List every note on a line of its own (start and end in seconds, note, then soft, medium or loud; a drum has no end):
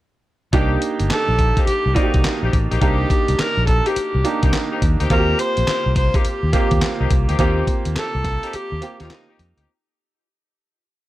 0.53 0.76 C2 loud
0.53 1.51 A#3 medium
0.53 0.80 A#3 medium
0.53 0.80 C4 medium
0.53 1.51 D4 medium
0.53 0.80 D#4 medium
0.53 1.52 D#4 medium
0.53 0.80 G4 loud
0.53 1.52 G4 loud
0.53 kick loud
0.53 closed hi-hat medium
0.82 closed hi-hat medium
1.00 1.08 G1 medium
1.00 closed hi-hat medium
1.10 1.64 A4 loud
1.10 muted fingered electric bass stroke soft
1.10 snare loud
1.10 clap medium
1.10 closed hi-hat medium
1.29 1.51 A#1 medium
1.39 kick medium
1.39 closed hi-hat medium
1.57 1.68 A#3 medium
1.57 1.68 C4 medium
1.57 1.68 D#4 medium
1.57 1.68 G4 medium
1.57 kick medium
1.57 closed hi-hat medium
1.67 1.97 G4 loud
1.67 muted fingered electric bass stroke soft
1.67 closed hi-hat medium
1.86 1.94 C2 medium
1.95 2.71 A#3 medium
1.95 2.14 A#3 medium
1.95 2.14 C4 medium
1.95 2.14 D#4 medium
1.95 2.72 D#4 medium
1.95 2.53 D#4 medium
1.95 2.04 F#4 medium
1.95 2.15 G4 medium
1.95 2.71 D5 medium
1.95 kick loud
1.95 closed hi-hat medium
2.03 2.75 G4 medium
2.14 2.22 C2 loud
2.14 kick medium
2.14 closed hi-hat soft
2.24 snare loud
2.24 clap medium
2.24 closed hi-hat medium
2.42 2.51 A#1 medium
2.42 2.53 A#3 medium
2.42 2.53 C4 medium
2.42 2.54 D#4 medium
2.42 2.54 G4 medium
2.53 2.68 A1 medium
2.53 kick loud
2.53 closed hi-hat medium
2.71 2.80 A#1 medium
2.71 2.80 A#3 medium
2.71 2.80 C4 medium
2.71 2.80 D#4 medium
2.71 2.80 G4 medium
2.71 closed hi-hat soft
2.81 3.04 C2 medium
2.81 3.08 A#3 medium
2.81 3.80 A#3 medium
2.81 3.08 C4 medium
2.81 3.80 D4 medium
2.81 3.08 D#4 medium
2.81 3.80 D#4 medium
2.81 3.08 G4 medium
2.81 3.80 G4 medium
2.81 3.42 G4 loud
2.81 kick loud
2.81 closed hi-hat medium
3.10 kick loud
3.10 closed hi-hat medium
3.28 3.37 C2 medium
3.28 closed hi-hat medium
3.39 3.67 A#4 loud
3.39 snare loud
3.39 clap medium
3.39 closed hi-hat medium
3.57 3.80 A#1 loud
3.67 3.88 A4 loud
3.67 kick medium
3.67 closed hi-hat medium
3.85 3.96 A#3 medium
3.85 3.96 C4 medium
3.85 3.96 D#4 medium
3.85 3.96 G4 medium
3.85 4.82 G4 medium
3.85 closed hi-hat medium
3.96 muted fingered electric bass stroke soft
3.96 closed hi-hat medium
4.15 4.23 C2 medium
4.24 5.00 A#3 medium
4.24 5.00 D4 medium
4.24 5.00 D#4 medium
4.24 5.01 G4 medium
4.24 closed hi-hat medium
4.42 4.51 C2 medium
4.42 4.53 A#3 medium
4.42 4.53 C4 medium
4.42 4.53 D#4 medium
4.42 4.54 G4 medium
4.42 kick medium
4.42 closed hi-hat medium
4.53 snare loud
4.53 clap medium
4.53 closed hi-hat medium
4.71 4.82 A#3 medium
4.71 4.82 C4 medium
4.71 4.82 D#4 medium
4.71 4.82 G4 medium
4.82 4.96 D#2 medium
4.82 kick medium
4.82 closed hi-hat medium
5.00 5.08 D2 medium
5.00 5.09 A#3 medium
5.00 5.09 C4 medium
5.00 5.09 D#4 medium
5.00 5.09 G4 medium
5.00 closed hi-hat medium
5.10 5.33 D#2 loud
5.10 5.37 A#3 medium
5.10 6.09 A#3 medium
5.10 5.37 C4 medium
5.10 6.09 C4 medium
5.10 5.37 D#4 medium
5.10 6.09 F4 medium
5.10 5.19 F#4 medium
5.10 5.37 G4 loud
5.10 5.40 A#4 loud
5.10 kick loud
5.10 closed hi-hat medium
5.18 6.12 G4 medium
5.39 5.96 C5 loud
5.39 closed hi-hat medium
5.57 5.66 A#1 medium
5.57 closed hi-hat medium
5.67 muted fingered electric bass stroke medium
5.67 snare loud
5.67 clap medium
5.67 closed hi-hat medium
5.86 6.08 C2 medium
5.96 6.17 C5 loud
5.96 kick medium
5.96 closed hi-hat medium
6.14 6.25 A#3 medium
6.14 6.25 C4 medium
6.14 6.25 D#4 medium
6.14 6.25 G4 medium
6.14 7.11 G4 medium
6.14 kick medium
6.14 closed hi-hat medium
6.25 muted fingered electric bass stroke soft
6.25 closed hi-hat medium
6.43 6.51 D#2 medium
6.53 7.29 A#3 medium
6.53 6.72 A#3 medium
6.53 6.72 C4 medium
6.53 7.29 C4 medium
6.53 6.72 D#4 medium
6.53 7.29 F4 medium
6.53 6.72 G4 medium
6.53 7.29 G4 medium
6.53 kick loud
6.53 closed hi-hat medium
6.71 6.80 D#2 medium
6.71 kick medium
6.71 closed hi-hat soft
6.82 snare loud
6.82 clap medium
6.82 closed hi-hat medium
7.00 7.08 C2 medium
7.00 7.11 A#3 medium
7.00 7.11 C4 medium
7.00 7.11 D#4 medium
7.00 7.11 G4 medium
7.11 7.25 C2 medium
7.11 kick loud
7.11 closed hi-hat medium
7.28 7.37 D2 loud
7.28 7.38 A#3 medium
7.28 7.38 C4 medium
7.28 7.38 D#4 medium
7.28 7.38 G4 medium
7.28 closed hi-hat soft
7.39 7.61 D#2 loud
7.39 8.37 A#3 medium
7.39 7.66 A#3 medium
7.39 7.66 C4 medium
7.39 8.37 C4 medium
7.39 7.66 D#4 medium
7.39 8.37 F4 medium
7.39 7.66 G4 loud
7.39 8.38 G4 medium
7.39 kick loud
7.39 closed hi-hat medium
7.67 kick medium
7.67 closed hi-hat medium
7.85 7.94 D#2 medium
7.85 closed hi-hat medium
7.96 8.56 A4 loud
7.96 muted fingered electric bass stroke soft
7.96 snare loud
7.96 clap medium
7.96 closed hi-hat medium
8.15 8.37 C2 medium
8.25 kick medium
8.25 snare medium
8.25 closed hi-hat medium
8.43 8.54 A#3 medium
8.43 8.54 C4 medium
8.43 8.54 D#4 medium
8.43 8.54 G4 medium
8.43 closed hi-hat medium
8.53 9.01 G4 loud
8.53 muted fingered electric bass stroke soft
8.53 closed hi-hat medium
8.72 8.80 D#2 medium
8.81 9.57 A#3 medium
8.81 9.57 C4 medium
8.81 9.58 F4 medium
8.81 9.58 G4 medium
8.81 closed hi-hat medium
9.00 9.08 D#2 medium
9.00 9.11 A#3 medium
9.00 9.11 C4 medium
9.00 9.11 D#4 medium
9.00 9.14 F4 medium
9.00 9.11 G4 medium
9.00 snare medium
9.00 closed hi-hat medium
9.10 9.58 D#4 medium
9.10 snare loud
9.10 clap medium
9.10 closed hi-hat medium
9.29 9.39 A#3 medium
9.29 9.39 C4 medium
9.29 9.39 D#4 medium
9.29 9.39 G4 medium
9.39 9.53 F2 medium
9.39 closed hi-hat medium
9.57 9.65 D2 medium
9.57 9.68 A#3 medium
9.57 9.68 C4 medium
9.57 9.68 D#4 medium
9.57 9.68 G4 medium
9.57 closed hi-hat soft